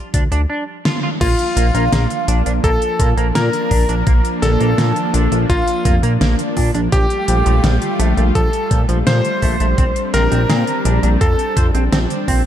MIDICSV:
0, 0, Header, 1, 7, 480
1, 0, Start_track
1, 0, Key_signature, -2, "major"
1, 0, Tempo, 714286
1, 813, Time_signature, 4, 2, 24, 8
1, 8374, End_track
2, 0, Start_track
2, 0, Title_t, "Digital synth lead"
2, 0, Program_c, 0, 84
2, 813, Note_on_c, 0, 77, 109
2, 1677, Note_off_c, 0, 77, 0
2, 1773, Note_on_c, 0, 81, 96
2, 2071, Note_off_c, 0, 81, 0
2, 2253, Note_on_c, 0, 82, 104
2, 2877, Note_off_c, 0, 82, 0
2, 2974, Note_on_c, 0, 81, 103
2, 3598, Note_off_c, 0, 81, 0
2, 3694, Note_on_c, 0, 77, 99
2, 3991, Note_off_c, 0, 77, 0
2, 4654, Note_on_c, 0, 79, 109
2, 5518, Note_off_c, 0, 79, 0
2, 5614, Note_on_c, 0, 81, 99
2, 5912, Note_off_c, 0, 81, 0
2, 6093, Note_on_c, 0, 84, 103
2, 6717, Note_off_c, 0, 84, 0
2, 6814, Note_on_c, 0, 82, 109
2, 7437, Note_off_c, 0, 82, 0
2, 7534, Note_on_c, 0, 81, 94
2, 7831, Note_off_c, 0, 81, 0
2, 8374, End_track
3, 0, Start_track
3, 0, Title_t, "Electric grand piano"
3, 0, Program_c, 1, 2
3, 813, Note_on_c, 1, 65, 100
3, 1677, Note_off_c, 1, 65, 0
3, 1773, Note_on_c, 1, 69, 90
3, 2071, Note_off_c, 1, 69, 0
3, 2252, Note_on_c, 1, 70, 92
3, 2877, Note_off_c, 1, 70, 0
3, 2972, Note_on_c, 1, 69, 101
3, 3597, Note_off_c, 1, 69, 0
3, 3693, Note_on_c, 1, 65, 96
3, 3991, Note_off_c, 1, 65, 0
3, 4653, Note_on_c, 1, 67, 101
3, 5517, Note_off_c, 1, 67, 0
3, 5613, Note_on_c, 1, 69, 88
3, 5911, Note_off_c, 1, 69, 0
3, 6093, Note_on_c, 1, 72, 93
3, 6717, Note_off_c, 1, 72, 0
3, 6813, Note_on_c, 1, 70, 101
3, 7437, Note_off_c, 1, 70, 0
3, 7533, Note_on_c, 1, 69, 91
3, 7831, Note_off_c, 1, 69, 0
3, 8374, End_track
4, 0, Start_track
4, 0, Title_t, "Analog synth pad"
4, 0, Program_c, 2, 89
4, 0, Note_on_c, 2, 53, 79
4, 0, Note_on_c, 2, 55, 75
4, 0, Note_on_c, 2, 62, 95
4, 306, Note_off_c, 2, 62, 0
4, 307, Note_off_c, 2, 53, 0
4, 319, Note_off_c, 2, 55, 0
4, 814, Note_on_c, 2, 53, 83
4, 814, Note_on_c, 2, 58, 80
4, 814, Note_on_c, 2, 62, 92
4, 4627, Note_off_c, 2, 53, 0
4, 4627, Note_off_c, 2, 58, 0
4, 4627, Note_off_c, 2, 62, 0
4, 4652, Note_on_c, 2, 57, 78
4, 4653, Note_on_c, 2, 55, 86
4, 4653, Note_on_c, 2, 65, 96
4, 6554, Note_off_c, 2, 57, 0
4, 6554, Note_off_c, 2, 65, 0
4, 6573, Note_on_c, 2, 60, 77
4, 6573, Note_on_c, 2, 62, 88
4, 8374, Note_off_c, 2, 55, 0
4, 8374, Note_off_c, 2, 60, 0
4, 8374, Note_off_c, 2, 62, 0
4, 8374, End_track
5, 0, Start_track
5, 0, Title_t, "Clean electric guitar"
5, 0, Program_c, 3, 27
5, 93, Note_on_c, 3, 62, 73
5, 153, Note_off_c, 3, 62, 0
5, 213, Note_on_c, 3, 62, 100
5, 273, Note_off_c, 3, 62, 0
5, 333, Note_on_c, 3, 62, 86
5, 423, Note_off_c, 3, 62, 0
5, 573, Note_on_c, 3, 65, 70
5, 663, Note_off_c, 3, 65, 0
5, 693, Note_on_c, 3, 65, 72
5, 729, Note_off_c, 3, 65, 0
5, 813, Note_on_c, 3, 58, 81
5, 849, Note_off_c, 3, 58, 0
5, 1054, Note_on_c, 3, 58, 78
5, 1114, Note_off_c, 3, 58, 0
5, 1174, Note_on_c, 3, 58, 103
5, 1234, Note_off_c, 3, 58, 0
5, 1294, Note_on_c, 3, 58, 85
5, 1384, Note_off_c, 3, 58, 0
5, 1534, Note_on_c, 3, 62, 79
5, 1624, Note_off_c, 3, 62, 0
5, 1653, Note_on_c, 3, 62, 72
5, 1689, Note_off_c, 3, 62, 0
5, 1774, Note_on_c, 3, 58, 87
5, 1810, Note_off_c, 3, 58, 0
5, 2014, Note_on_c, 3, 58, 75
5, 2074, Note_off_c, 3, 58, 0
5, 2134, Note_on_c, 3, 58, 103
5, 2193, Note_off_c, 3, 58, 0
5, 2254, Note_on_c, 3, 58, 88
5, 2344, Note_off_c, 3, 58, 0
5, 2494, Note_on_c, 3, 62, 76
5, 2583, Note_off_c, 3, 62, 0
5, 2613, Note_on_c, 3, 62, 72
5, 2649, Note_off_c, 3, 62, 0
5, 2733, Note_on_c, 3, 58, 82
5, 2769, Note_off_c, 3, 58, 0
5, 2974, Note_on_c, 3, 58, 75
5, 3034, Note_off_c, 3, 58, 0
5, 3094, Note_on_c, 3, 58, 108
5, 3154, Note_off_c, 3, 58, 0
5, 3214, Note_on_c, 3, 58, 86
5, 3303, Note_off_c, 3, 58, 0
5, 3453, Note_on_c, 3, 62, 78
5, 3543, Note_off_c, 3, 62, 0
5, 3574, Note_on_c, 3, 62, 71
5, 3610, Note_off_c, 3, 62, 0
5, 3693, Note_on_c, 3, 58, 87
5, 3729, Note_off_c, 3, 58, 0
5, 3934, Note_on_c, 3, 58, 77
5, 3994, Note_off_c, 3, 58, 0
5, 4054, Note_on_c, 3, 58, 105
5, 4113, Note_off_c, 3, 58, 0
5, 4174, Note_on_c, 3, 58, 88
5, 4264, Note_off_c, 3, 58, 0
5, 4413, Note_on_c, 3, 62, 76
5, 4503, Note_off_c, 3, 62, 0
5, 4533, Note_on_c, 3, 62, 78
5, 4569, Note_off_c, 3, 62, 0
5, 4653, Note_on_c, 3, 53, 87
5, 4689, Note_off_c, 3, 53, 0
5, 4893, Note_on_c, 3, 53, 80
5, 4953, Note_off_c, 3, 53, 0
5, 5013, Note_on_c, 3, 53, 109
5, 5073, Note_off_c, 3, 53, 0
5, 5133, Note_on_c, 3, 53, 89
5, 5223, Note_off_c, 3, 53, 0
5, 5373, Note_on_c, 3, 57, 77
5, 5463, Note_off_c, 3, 57, 0
5, 5492, Note_on_c, 3, 57, 76
5, 5529, Note_off_c, 3, 57, 0
5, 5613, Note_on_c, 3, 53, 88
5, 5649, Note_off_c, 3, 53, 0
5, 5852, Note_on_c, 3, 53, 74
5, 5913, Note_off_c, 3, 53, 0
5, 5973, Note_on_c, 3, 53, 106
5, 6033, Note_off_c, 3, 53, 0
5, 6093, Note_on_c, 3, 53, 86
5, 6183, Note_off_c, 3, 53, 0
5, 6333, Note_on_c, 3, 57, 77
5, 6423, Note_off_c, 3, 57, 0
5, 6453, Note_on_c, 3, 57, 74
5, 6489, Note_off_c, 3, 57, 0
5, 6573, Note_on_c, 3, 60, 89
5, 6609, Note_off_c, 3, 60, 0
5, 6813, Note_on_c, 3, 60, 82
5, 6873, Note_off_c, 3, 60, 0
5, 6933, Note_on_c, 3, 60, 106
5, 6993, Note_off_c, 3, 60, 0
5, 7053, Note_on_c, 3, 60, 86
5, 7143, Note_off_c, 3, 60, 0
5, 7293, Note_on_c, 3, 62, 76
5, 7383, Note_off_c, 3, 62, 0
5, 7413, Note_on_c, 3, 62, 73
5, 7449, Note_off_c, 3, 62, 0
5, 7533, Note_on_c, 3, 60, 90
5, 7569, Note_off_c, 3, 60, 0
5, 7773, Note_on_c, 3, 72, 74
5, 7833, Note_off_c, 3, 72, 0
5, 7893, Note_on_c, 3, 60, 79
5, 7953, Note_off_c, 3, 60, 0
5, 8013, Note_on_c, 3, 60, 87
5, 8049, Note_off_c, 3, 60, 0
5, 8252, Note_on_c, 3, 60, 101
5, 8343, Note_off_c, 3, 60, 0
5, 8374, End_track
6, 0, Start_track
6, 0, Title_t, "Analog synth bass"
6, 0, Program_c, 4, 38
6, 93, Note_on_c, 4, 38, 97
6, 188, Note_off_c, 4, 38, 0
6, 213, Note_on_c, 4, 38, 81
6, 308, Note_off_c, 4, 38, 0
6, 813, Note_on_c, 4, 34, 102
6, 908, Note_off_c, 4, 34, 0
6, 1052, Note_on_c, 4, 34, 95
6, 1148, Note_off_c, 4, 34, 0
6, 1173, Note_on_c, 4, 34, 88
6, 1268, Note_off_c, 4, 34, 0
6, 1293, Note_on_c, 4, 34, 104
6, 1389, Note_off_c, 4, 34, 0
6, 1533, Note_on_c, 4, 34, 93
6, 1629, Note_off_c, 4, 34, 0
6, 1653, Note_on_c, 4, 34, 83
6, 1748, Note_off_c, 4, 34, 0
6, 1773, Note_on_c, 4, 34, 104
6, 1868, Note_off_c, 4, 34, 0
6, 2013, Note_on_c, 4, 46, 104
6, 2108, Note_off_c, 4, 46, 0
6, 2133, Note_on_c, 4, 34, 88
6, 2229, Note_off_c, 4, 34, 0
6, 2253, Note_on_c, 4, 46, 104
6, 2348, Note_off_c, 4, 46, 0
6, 2493, Note_on_c, 4, 34, 93
6, 2588, Note_off_c, 4, 34, 0
6, 2613, Note_on_c, 4, 34, 85
6, 2708, Note_off_c, 4, 34, 0
6, 2733, Note_on_c, 4, 34, 106
6, 2828, Note_off_c, 4, 34, 0
6, 2974, Note_on_c, 4, 34, 99
6, 3069, Note_off_c, 4, 34, 0
6, 3093, Note_on_c, 4, 34, 84
6, 3189, Note_off_c, 4, 34, 0
6, 3213, Note_on_c, 4, 46, 112
6, 3308, Note_off_c, 4, 46, 0
6, 3453, Note_on_c, 4, 34, 92
6, 3548, Note_off_c, 4, 34, 0
6, 3573, Note_on_c, 4, 34, 85
6, 3668, Note_off_c, 4, 34, 0
6, 3693, Note_on_c, 4, 34, 101
6, 3789, Note_off_c, 4, 34, 0
6, 3933, Note_on_c, 4, 29, 101
6, 4029, Note_off_c, 4, 29, 0
6, 4052, Note_on_c, 4, 46, 82
6, 4148, Note_off_c, 4, 46, 0
6, 4173, Note_on_c, 4, 34, 102
6, 4268, Note_off_c, 4, 34, 0
6, 4413, Note_on_c, 4, 46, 91
6, 4509, Note_off_c, 4, 46, 0
6, 4532, Note_on_c, 4, 34, 80
6, 4628, Note_off_c, 4, 34, 0
6, 4653, Note_on_c, 4, 34, 101
6, 4749, Note_off_c, 4, 34, 0
6, 4893, Note_on_c, 4, 34, 103
6, 4989, Note_off_c, 4, 34, 0
6, 5014, Note_on_c, 4, 34, 88
6, 5109, Note_off_c, 4, 34, 0
6, 5133, Note_on_c, 4, 34, 108
6, 5229, Note_off_c, 4, 34, 0
6, 5373, Note_on_c, 4, 34, 100
6, 5468, Note_off_c, 4, 34, 0
6, 5493, Note_on_c, 4, 34, 85
6, 5588, Note_off_c, 4, 34, 0
6, 5613, Note_on_c, 4, 34, 105
6, 5708, Note_off_c, 4, 34, 0
6, 5853, Note_on_c, 4, 46, 99
6, 5948, Note_off_c, 4, 46, 0
6, 5973, Note_on_c, 4, 34, 82
6, 6068, Note_off_c, 4, 34, 0
6, 6094, Note_on_c, 4, 46, 97
6, 6189, Note_off_c, 4, 46, 0
6, 6333, Note_on_c, 4, 34, 94
6, 6428, Note_off_c, 4, 34, 0
6, 6454, Note_on_c, 4, 34, 84
6, 6549, Note_off_c, 4, 34, 0
6, 6573, Note_on_c, 4, 34, 103
6, 6668, Note_off_c, 4, 34, 0
6, 6813, Note_on_c, 4, 34, 98
6, 6908, Note_off_c, 4, 34, 0
6, 6933, Note_on_c, 4, 34, 83
6, 7028, Note_off_c, 4, 34, 0
6, 7053, Note_on_c, 4, 46, 109
6, 7148, Note_off_c, 4, 46, 0
6, 7293, Note_on_c, 4, 34, 93
6, 7388, Note_off_c, 4, 34, 0
6, 7412, Note_on_c, 4, 34, 84
6, 7508, Note_off_c, 4, 34, 0
6, 7533, Note_on_c, 4, 41, 106
6, 7628, Note_off_c, 4, 41, 0
6, 7773, Note_on_c, 4, 41, 99
6, 7868, Note_off_c, 4, 41, 0
6, 7892, Note_on_c, 4, 34, 84
6, 7988, Note_off_c, 4, 34, 0
6, 8013, Note_on_c, 4, 34, 103
6, 8108, Note_off_c, 4, 34, 0
6, 8253, Note_on_c, 4, 34, 88
6, 8348, Note_off_c, 4, 34, 0
6, 8374, End_track
7, 0, Start_track
7, 0, Title_t, "Drums"
7, 93, Note_on_c, 9, 36, 100
7, 93, Note_on_c, 9, 42, 93
7, 160, Note_off_c, 9, 36, 0
7, 160, Note_off_c, 9, 42, 0
7, 214, Note_on_c, 9, 42, 39
7, 281, Note_off_c, 9, 42, 0
7, 573, Note_on_c, 9, 38, 98
7, 641, Note_off_c, 9, 38, 0
7, 813, Note_on_c, 9, 36, 109
7, 814, Note_on_c, 9, 42, 73
7, 814, Note_on_c, 9, 49, 108
7, 880, Note_off_c, 9, 36, 0
7, 881, Note_off_c, 9, 42, 0
7, 881, Note_off_c, 9, 49, 0
7, 934, Note_on_c, 9, 42, 38
7, 1001, Note_off_c, 9, 42, 0
7, 1054, Note_on_c, 9, 42, 99
7, 1121, Note_off_c, 9, 42, 0
7, 1174, Note_on_c, 9, 42, 40
7, 1241, Note_off_c, 9, 42, 0
7, 1294, Note_on_c, 9, 38, 121
7, 1294, Note_on_c, 9, 42, 73
7, 1361, Note_off_c, 9, 38, 0
7, 1361, Note_off_c, 9, 42, 0
7, 1414, Note_on_c, 9, 42, 41
7, 1481, Note_off_c, 9, 42, 0
7, 1534, Note_on_c, 9, 42, 98
7, 1601, Note_off_c, 9, 42, 0
7, 1654, Note_on_c, 9, 42, 44
7, 1721, Note_off_c, 9, 42, 0
7, 1773, Note_on_c, 9, 36, 115
7, 1774, Note_on_c, 9, 42, 73
7, 1840, Note_off_c, 9, 36, 0
7, 1841, Note_off_c, 9, 42, 0
7, 1894, Note_on_c, 9, 42, 41
7, 1961, Note_off_c, 9, 42, 0
7, 2013, Note_on_c, 9, 36, 111
7, 2014, Note_on_c, 9, 42, 95
7, 2080, Note_off_c, 9, 36, 0
7, 2081, Note_off_c, 9, 42, 0
7, 2134, Note_on_c, 9, 42, 44
7, 2201, Note_off_c, 9, 42, 0
7, 2254, Note_on_c, 9, 38, 118
7, 2254, Note_on_c, 9, 42, 69
7, 2321, Note_off_c, 9, 38, 0
7, 2321, Note_off_c, 9, 42, 0
7, 2374, Note_on_c, 9, 42, 41
7, 2441, Note_off_c, 9, 42, 0
7, 2493, Note_on_c, 9, 36, 62
7, 2494, Note_on_c, 9, 46, 85
7, 2560, Note_off_c, 9, 36, 0
7, 2561, Note_off_c, 9, 46, 0
7, 2614, Note_on_c, 9, 42, 40
7, 2681, Note_off_c, 9, 42, 0
7, 2733, Note_on_c, 9, 36, 124
7, 2734, Note_on_c, 9, 42, 70
7, 2800, Note_off_c, 9, 36, 0
7, 2801, Note_off_c, 9, 42, 0
7, 2854, Note_on_c, 9, 42, 39
7, 2921, Note_off_c, 9, 42, 0
7, 2974, Note_on_c, 9, 38, 61
7, 2974, Note_on_c, 9, 42, 98
7, 3041, Note_off_c, 9, 38, 0
7, 3041, Note_off_c, 9, 42, 0
7, 3095, Note_on_c, 9, 42, 42
7, 3162, Note_off_c, 9, 42, 0
7, 3214, Note_on_c, 9, 38, 127
7, 3214, Note_on_c, 9, 42, 70
7, 3281, Note_off_c, 9, 38, 0
7, 3281, Note_off_c, 9, 42, 0
7, 3334, Note_on_c, 9, 42, 40
7, 3401, Note_off_c, 9, 42, 0
7, 3454, Note_on_c, 9, 42, 93
7, 3522, Note_off_c, 9, 42, 0
7, 3574, Note_on_c, 9, 42, 42
7, 3641, Note_off_c, 9, 42, 0
7, 3693, Note_on_c, 9, 36, 116
7, 3694, Note_on_c, 9, 42, 75
7, 3760, Note_off_c, 9, 36, 0
7, 3761, Note_off_c, 9, 42, 0
7, 3814, Note_on_c, 9, 42, 44
7, 3881, Note_off_c, 9, 42, 0
7, 3933, Note_on_c, 9, 36, 116
7, 3933, Note_on_c, 9, 42, 95
7, 4000, Note_off_c, 9, 36, 0
7, 4001, Note_off_c, 9, 42, 0
7, 4054, Note_on_c, 9, 42, 43
7, 4121, Note_off_c, 9, 42, 0
7, 4173, Note_on_c, 9, 38, 125
7, 4173, Note_on_c, 9, 42, 71
7, 4241, Note_off_c, 9, 38, 0
7, 4241, Note_off_c, 9, 42, 0
7, 4293, Note_on_c, 9, 42, 40
7, 4361, Note_off_c, 9, 42, 0
7, 4413, Note_on_c, 9, 36, 68
7, 4413, Note_on_c, 9, 46, 79
7, 4480, Note_off_c, 9, 36, 0
7, 4480, Note_off_c, 9, 46, 0
7, 4533, Note_on_c, 9, 42, 43
7, 4600, Note_off_c, 9, 42, 0
7, 4653, Note_on_c, 9, 36, 120
7, 4653, Note_on_c, 9, 42, 68
7, 4720, Note_off_c, 9, 36, 0
7, 4720, Note_off_c, 9, 42, 0
7, 4773, Note_on_c, 9, 42, 37
7, 4840, Note_off_c, 9, 42, 0
7, 4893, Note_on_c, 9, 42, 90
7, 4960, Note_off_c, 9, 42, 0
7, 5013, Note_on_c, 9, 42, 41
7, 5080, Note_off_c, 9, 42, 0
7, 5133, Note_on_c, 9, 38, 127
7, 5133, Note_on_c, 9, 42, 69
7, 5200, Note_off_c, 9, 38, 0
7, 5200, Note_off_c, 9, 42, 0
7, 5253, Note_on_c, 9, 42, 39
7, 5320, Note_off_c, 9, 42, 0
7, 5373, Note_on_c, 9, 42, 89
7, 5441, Note_off_c, 9, 42, 0
7, 5493, Note_on_c, 9, 42, 42
7, 5561, Note_off_c, 9, 42, 0
7, 5613, Note_on_c, 9, 36, 126
7, 5613, Note_on_c, 9, 42, 69
7, 5680, Note_off_c, 9, 36, 0
7, 5680, Note_off_c, 9, 42, 0
7, 5733, Note_on_c, 9, 42, 42
7, 5801, Note_off_c, 9, 42, 0
7, 5853, Note_on_c, 9, 36, 113
7, 5853, Note_on_c, 9, 42, 96
7, 5920, Note_off_c, 9, 36, 0
7, 5920, Note_off_c, 9, 42, 0
7, 5973, Note_on_c, 9, 42, 42
7, 6040, Note_off_c, 9, 42, 0
7, 6093, Note_on_c, 9, 38, 127
7, 6093, Note_on_c, 9, 42, 69
7, 6160, Note_off_c, 9, 38, 0
7, 6160, Note_off_c, 9, 42, 0
7, 6213, Note_on_c, 9, 42, 41
7, 6281, Note_off_c, 9, 42, 0
7, 6333, Note_on_c, 9, 36, 66
7, 6333, Note_on_c, 9, 46, 81
7, 6400, Note_off_c, 9, 36, 0
7, 6400, Note_off_c, 9, 46, 0
7, 6453, Note_on_c, 9, 42, 40
7, 6520, Note_off_c, 9, 42, 0
7, 6573, Note_on_c, 9, 36, 116
7, 6573, Note_on_c, 9, 42, 66
7, 6640, Note_off_c, 9, 36, 0
7, 6640, Note_off_c, 9, 42, 0
7, 6693, Note_on_c, 9, 42, 38
7, 6760, Note_off_c, 9, 42, 0
7, 6813, Note_on_c, 9, 38, 61
7, 6813, Note_on_c, 9, 42, 91
7, 6880, Note_off_c, 9, 38, 0
7, 6880, Note_off_c, 9, 42, 0
7, 6933, Note_on_c, 9, 42, 39
7, 7000, Note_off_c, 9, 42, 0
7, 7053, Note_on_c, 9, 38, 121
7, 7053, Note_on_c, 9, 42, 63
7, 7120, Note_off_c, 9, 38, 0
7, 7120, Note_off_c, 9, 42, 0
7, 7173, Note_on_c, 9, 42, 38
7, 7240, Note_off_c, 9, 42, 0
7, 7293, Note_on_c, 9, 42, 92
7, 7361, Note_off_c, 9, 42, 0
7, 7414, Note_on_c, 9, 42, 40
7, 7481, Note_off_c, 9, 42, 0
7, 7533, Note_on_c, 9, 36, 124
7, 7534, Note_on_c, 9, 42, 67
7, 7600, Note_off_c, 9, 36, 0
7, 7601, Note_off_c, 9, 42, 0
7, 7654, Note_on_c, 9, 42, 39
7, 7721, Note_off_c, 9, 42, 0
7, 7773, Note_on_c, 9, 36, 109
7, 7774, Note_on_c, 9, 42, 96
7, 7840, Note_off_c, 9, 36, 0
7, 7841, Note_off_c, 9, 42, 0
7, 7894, Note_on_c, 9, 42, 41
7, 7961, Note_off_c, 9, 42, 0
7, 8014, Note_on_c, 9, 38, 125
7, 8014, Note_on_c, 9, 42, 65
7, 8081, Note_off_c, 9, 38, 0
7, 8081, Note_off_c, 9, 42, 0
7, 8134, Note_on_c, 9, 42, 41
7, 8201, Note_off_c, 9, 42, 0
7, 8253, Note_on_c, 9, 36, 66
7, 8254, Note_on_c, 9, 46, 85
7, 8320, Note_off_c, 9, 36, 0
7, 8321, Note_off_c, 9, 46, 0
7, 8374, End_track
0, 0, End_of_file